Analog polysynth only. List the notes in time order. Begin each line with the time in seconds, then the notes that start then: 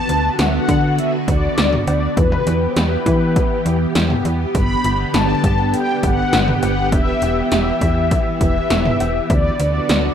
Already playing: A5
0.39 F#5
0.46 E5
0.53 F#5
0.98 E5
1.28 D5
1.88 D5
2.17 B4
2.70 C5
2.77 B4
4.55 B5
5.14 A5
5.74 G5
6.03 F#5
6.63 F#5
6.92 E5
7.52 E5
8.41 E5
9.30 D5
9.60 D5